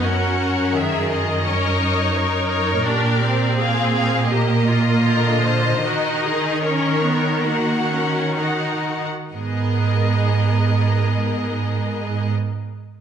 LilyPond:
<<
  \new Staff \with { instrumentName = "Violin section" } { \time 4/4 \key gis \minor \tempo 4 = 75 << { fis''4 e''8 dis''4. cis''8 cis''8 | d''4 eis''8 eis''8 dis''2~ | dis''4 cis''4 fis''4 fis''8 r8 | dis''1 | } \\ { ais'8 ais'4. cis''4 ais'4 | g'4 gis'4 ais'4 ais'8 bis'8 | ais'4 ais'2 ais'8 r8 | ais'1 | } >> }
  \new Staff \with { instrumentName = "Viola section" } { \time 4/4 \key gis \minor << { fis'4 gis'4 ais'4 ais'4~ | ais'4 gis'4 g'8 eis'4. | fis'8 gis'8 ais'4 fis'4 fis'8 r8 | gis'1 | } \\ { cis'4 dis4 cis'8 dis'4. | d'8 bis4. ais4 d4 | dis'4 cis'8 b8 ais8 cis'8 dis'8 r8 | b1 | } >> }
  \new Staff \with { instrumentName = "Cello section" } { \clef bass \time 4/4 \key gis \minor fis,1 | ais,1 | dis2.~ dis8 r8 | gis,1 | }
>>